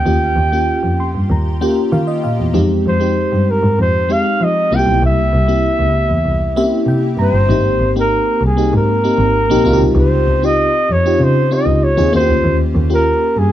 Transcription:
Already playing: G5
0.05 D#2 A#3 C#4 F4 G4
0.36 D#2
0.52 A#3 C#4 F4 G4
0.83 F2
1.00 C6
1.15 G2
1.30 D#2 A#5
1.61 A#3 C#4 F4 G4 G5
1.92 D#3 F5
2.07 D#5
2.24 A#2 F5
2.39 E2
2.54 F2 G#3 C4 D#4 G4
2.86 F2 C5
3.00 G#3 C4 D#4 G4
3.32 G2
3.51 A#4
3.63 G#2
3.78 F2 C5
4.09 G#3 C4 D#4 G4 F5
4.40 F3 D#5
4.71 C2 A#3 C4 E4 F4 G5
4.79 G4
4.86 B1
5.02 C2 E5
5.33 C2
5.48 A#3 C4 E4 G4
5.79 C#2
6.09 E2
6.25 C2
6.56 A#3 C4 C#4 G4 E5
6.64 E4
6.86 C3 G5
7.18 G2 A#5
7.22 C5
7.33 G1
7.49 G#1 A#3 C4 D#4 G4
7.80 G#1
7.96 A#3 C4 D#4 G4 A#4
8.41 C2
8.45 G#4
8.57 A#3 C4 D#4 G4
8.73 G#2 A#4
9.04 A#3 C4 D#4 G4
9.18 G#1
9.50 A#1 A#3 C4 D#4 G4
9.65 C#2 C4 D#4 F4 F#4
9.73 G4
9.81 C2
9.95 C#2
10.00 C5
10.27 C#2
10.42 C4 D#4 F4 G4 D#5
10.90 F2 C#5
11.05 C4 D#4 F4 G4
11.20 C#3 C5
11.51 C4 D#4 F4 G4 D#5
11.66 C#2
11.84 C#5
11.97 D#2 C4 D#4 F4 G#4
12.13 D#2 A#3 C#4 F4 F#4 C5
12.20 G4
12.29 D2
12.44 D#2
12.75 D#2
12.90 A#3 C#4 F4 G4
12.94 A#4
13.36 G2 G#4

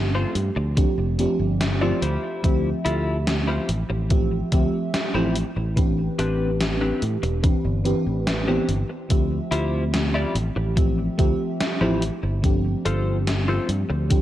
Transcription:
Already playing: G1 F3 A3 C4 D4 G4
0.15 F4 A4 C5
0.35 G2, closed hi-hat
0.56 D2, muted clean electric guitar stroke
0.77 F3 A3 C4 D4 G4, muted clean electric guitar stroke, kick, closed hi-hat
0.98 F1
1.19 F3 A3 C4 D4 G4, closed hi-hat
1.39 G1
1.61 snare, closed hi-hat
1.81 F3 A3 C4 D4 F4 G4 A4 D5
2.02 D2 E4 F4 G4 C5, closed hi-hat
2.43 D2 F3 A3 C4 G4 E5, kick, closed hi-hat
2.85 D2 E4 F4 G4 A4, closed hi-hat
3.27 snare, closed hi-hat
3.47 E4 F4 G4 C5
3.69 A1, closed hi-hat
3.89 A1, muted clean electric guitar stroke
4.10 F3 A3 C4 G4 E5, muted clean electric guitar stroke, kick, closed hi-hat
4.52 D2 F3 A3 C4 G4 E5, kick, closed hi-hat
4.94 snare, closed hi-hat
5.14 A1 F3 A3 C4 E4 F4 G4 C5
5.36 closed hi-hat
5.56 A1, muted clean electric guitar stroke
5.76 E3 C4 D4 G4 B4, kick, closed hi-hat
6.19 A1 C4 D4 G4 B4, closed hi-hat
6.61 snare, closed hi-hat
6.81 C4 D4 G4 B4
7.02 A2, closed hi-hat
7.23 E1, muted clean electric guitar stroke, closed hi-hat
7.43 E3 C4 D4 G4 B4, muted clean electric guitar stroke, kick, closed hi-hat
7.65 G1
7.84 E3 C4 D4 G4 B4, closed hi-hat
8.06 A1
8.27 snare, closed hi-hat
8.47 E3 B3 C4 D4 G4 C5
8.68 G1, closed hi-hat
8.89 muted clean electric guitar stroke
9.09 D2 F3 A3 C4 G4 E5, kick, closed hi-hat
9.51 D2 E4 F4 G4 C5, closed hi-hat
9.94 snare, closed hi-hat
10.14 E4 F4 G4 D5
10.35 A1, closed hi-hat
10.56 A1, muted clean electric guitar stroke
10.76 F3 A3 C4 G4 E5, muted clean electric guitar stroke, kick, closed hi-hat
11.18 D2 F3 A3 C4 G4 E5, kick, closed hi-hat
11.60 snare, closed hi-hat
11.81 A1 F3 A3 C4 E4 F4 G4 C5
12.02 closed hi-hat
12.23 G1, muted clean electric guitar stroke
12.42 F3 A3 C4 D4 G4, kick, closed hi-hat
12.85 G1 F4 A4 C5, closed hi-hat
13.27 snare, closed hi-hat
13.48 F4 A4 C5
13.68 G2, closed hi-hat
13.89 D2, muted clean electric guitar stroke
14.09 F3 A3 C4 D4 G4, muted clean electric guitar stroke, kick, closed hi-hat

